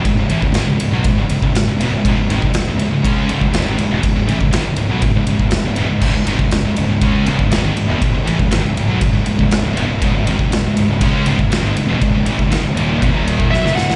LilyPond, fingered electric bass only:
\new Staff \with { instrumentName = "Fingered electric bass" } { \clef bass \time 4/4 \key cis \minor \tempo 4 = 120 cis,,16 cis,,16 a,,16 cis,,16 gis,,16 cis,,16 cis,,16 b,,16 cis,,16 cis,,16 cis,,16 cis,,16 cis,,16 cis,,16 e,,16 cis,,16 | cis,,16 cis,,16 gis,,16 cis,,16 cis,,16 cis,,16 cis,,16 cis,,16 cis,8 cis,,16 cis,,16 dis,,16 gis,,16 cis,,16 e,,16 | cis,,16 cis,,16 a,,16 cis,,16 gis,,16 cis,,16 cis,,16 b,,16 cis,,16 cis,,16 cis,,16 cis,,16 cis,,16 cis,,16 e,,16 cis,,16 | cis,,16 cis,,16 gis,,16 cis,,16 cis,,16 cis,,16 cis,,16 cis,,16 cis,8 cis,,16 cis,,16 dis,,16 gis,,16 cis,,16 e,,16 |
cis,,16 cis,,16 a,,16 cis,,16 gis,,16 cis,,16 cis,,16 b,,16 cis,,16 cis,,16 cis,,16 cis,,16 cis,,16 cis,,16 e,,16 cis,,16 | cis,,16 cis,,16 gis,,16 cis,,16 cis,,16 cis,,16 cis,,16 cis,,16 cis,8 cis,,16 cis,,16 dis,,16 gis,,16 cis,,16 e,,16 | cis,,16 cis,,16 a,,16 cis,,16 gis,,16 cis,,16 dis,,8 e,,16 dis,,8. b,,16 fis,,16 cis,,16 e,,16 | }